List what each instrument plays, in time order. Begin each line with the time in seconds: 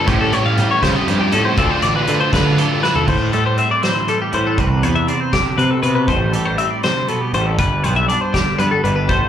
0.06 overdriven electric guitar A2 E3 G3 C#4 E4, clean electric guitar A2 G3 C#4 G4 C5, picked electric bass A2, kick, closed hi-hat
0.21 clean electric guitar A4
0.33 picked electric bass A2, clean electric guitar C#5, closed hi-hat
0.46 clean electric guitar F5
0.58 picked electric bass A2, clean electric guitar G3, closed hi-hat
0.71 clean electric guitar C#5
0.82 overdriven electric guitar A2 E3 G3 C#4 E4, picked electric bass C#3, clean electric guitar C5, kick, snare, closed hi-hat
0.95 clean electric guitar D#5
1.07 clean electric guitar F2 G4 C5, picked electric bass G2, closed hi-hat
1.21 picked electric bass G2, clean electric guitar G4
1.32 picked electric bass A2, clean electric guitar C#4 A4, closed hi-hat
1.45 clean electric guitar C5
1.56 picked electric bass D2, overdriven electric guitar D3 A3 D4 F4, clean electric guitar D3 C4 A4, kick, closed hi-hat
1.70 clean electric guitar C5
1.82 picked electric bass A1, clean electric guitar D5, closed hi-hat
1.96 clean electric guitar B4
2.07 picked electric bass D3, clean electric guitar A3 C4, closed hi-hat
2.20 clean electric guitar C5
2.32 picked electric bass D3, overdriven electric guitar D3 A3 D4 F4, clean electric guitar B4, kick, snare, closed hi-hat
2.58 clean electric guitar A2 G4 A4, closed hi-hat
2.83 clean electric guitar E4 B4, snare
2.95 clean electric guitar A4, floor tom
3.07 clean electric guitar A2 C5, picked electric bass A2, kick, crash
3.33 picked electric bass A2, clean electric guitar G3 A4, closed hi-hat
3.46 clean electric guitar C5
3.57 clean electric guitar C4 E5, closed hi-hat
3.71 clean electric guitar D5
3.82 clean electric guitar E3 C5, snare, closed hi-hat
4.08 clean electric guitar G3 A4, closed hi-hat
4.22 clean electric guitar G4
4.32 picked electric bass A2, clean electric guitar E3 C5, closed hi-hat
4.47 clean electric guitar A4
4.58 picked electric bass C2, clean electric guitar C3 B4, kick, closed hi-hat
4.83 picked electric bass E2, clean electric guitar B3 C5, closed hi-hat
4.96 clean electric guitar E5
5.08 clean electric guitar C4 D5, closed hi-hat
5.20 clean electric guitar C5
5.33 clean electric guitar D3 G4, kick, snare, closed hi-hat
5.57 clean electric guitar C3 B4, picked electric bass C3, closed hi-hat
5.71 clean electric guitar A4
5.83 clean electric guitar B2 B4, picked electric bass C3, closed hi-hat
5.95 clean electric guitar B4
6.08 picked electric bass A1, clean electric guitar A2 C5, kick, closed hi-hat
6.33 picked electric bass A1, clean electric guitar G3 A4, closed hi-hat
6.46 clean electric guitar C5
6.58 clean electric guitar C4 E5, closed hi-hat
6.71 clean electric guitar D5
6.83 clean electric guitar C3 C5, snare, closed hi-hat
7.08 clean electric guitar B2 A4, closed hi-hat
7.21 clean electric guitar G4
7.33 picked electric bass A1, clean electric guitar A2 C5, closed hi-hat
7.46 clean electric guitar A4
7.59 picked electric bass G1, clean electric guitar G2 B4, kick, closed hi-hat
7.84 picked electric bass B1, clean electric guitar B3 C5, closed hi-hat
7.96 clean electric guitar E5
8.09 clean electric guitar D4 D5, closed hi-hat
8.21 clean electric guitar C5
8.34 clean electric guitar D3 G4, kick, snare, closed hi-hat
8.59 picked electric bass G2, clean electric guitar B3 B4, closed hi-hat
8.71 clean electric guitar A4
8.84 picked electric bass G1, clean electric guitar D3 B4, closed hi-hat
8.96 clean electric guitar B4
9.09 picked electric bass A1, clean electric guitar A2 C5, kick, closed hi-hat